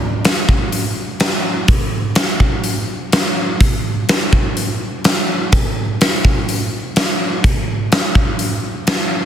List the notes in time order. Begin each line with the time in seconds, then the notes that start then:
0.25 snare, open hi-hat
0.49 kick
0.72 open hi-hat
1.20 snare, open hi-hat
1.68 kick, open hi-hat
2.15 snare, open hi-hat
2.40 kick
2.64 open hi-hat
3.12 snare, open hi-hat
3.61 kick, open hi-hat
4.09 snare, open hi-hat
4.33 kick
4.57 open hi-hat
5.04 snare, open hi-hat
5.52 kick, open hi-hat
6.01 snare, open hi-hat
6.25 kick
6.49 open hi-hat
6.96 snare, open hi-hat
7.44 kick, open hi-hat
7.92 snare, open hi-hat
8.15 kick
8.39 open hi-hat
8.87 snare, open hi-hat